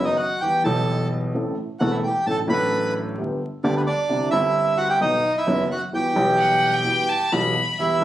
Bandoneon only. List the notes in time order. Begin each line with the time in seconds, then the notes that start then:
0.04 D#4 D#5
0.16 F#4 F#5
0.40 G4 G5
0.64 A4 A5
1.80 F#4 F#5
1.91 E4 E5
2.04 G4 G5
2.26 A4 A5
2.49 B4 B5
3.64 D4 D5
3.76 B3 B4
3.86 D4 D5
4.31 E4 E5
4.77 F#4 F#5
4.90 G4 G5
5.01 D#4 D#5
5.37 E4 E5
5.71 F#4 F#5
5.94 G4 G5
7.79 E4 E5